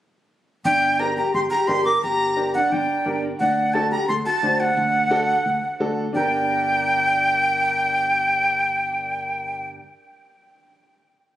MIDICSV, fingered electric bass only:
0, 0, Header, 1, 2, 480
1, 0, Start_track
1, 0, Key_signature, -2, "minor"
1, 0, Tempo, 344037
1, 907, Time_signature, 4, 2, 24, 8
1, 15854, End_track
2, 0, Start_track
2, 0, Title_t, "Fingered electric bass"
2, 0, Program_c, 0, 33
2, 906, Note_on_c, 0, 31, 89
2, 1675, Note_off_c, 0, 31, 0
2, 1872, Note_on_c, 0, 31, 89
2, 2062, Note_off_c, 0, 31, 0
2, 2353, Note_on_c, 0, 31, 93
2, 2734, Note_off_c, 0, 31, 0
2, 2837, Note_on_c, 0, 31, 93
2, 3600, Note_off_c, 0, 31, 0
2, 3795, Note_on_c, 0, 31, 92
2, 3983, Note_off_c, 0, 31, 0
2, 4266, Note_on_c, 0, 31, 81
2, 4649, Note_off_c, 0, 31, 0
2, 4749, Note_on_c, 0, 38, 92
2, 5513, Note_off_c, 0, 38, 0
2, 5700, Note_on_c, 0, 38, 82
2, 5892, Note_off_c, 0, 38, 0
2, 6179, Note_on_c, 0, 38, 81
2, 6563, Note_off_c, 0, 38, 0
2, 6657, Note_on_c, 0, 38, 101
2, 7424, Note_off_c, 0, 38, 0
2, 7613, Note_on_c, 0, 38, 95
2, 7806, Note_off_c, 0, 38, 0
2, 8094, Note_on_c, 0, 38, 81
2, 8478, Note_off_c, 0, 38, 0
2, 8582, Note_on_c, 0, 31, 87
2, 13659, Note_off_c, 0, 31, 0
2, 15854, End_track
0, 0, End_of_file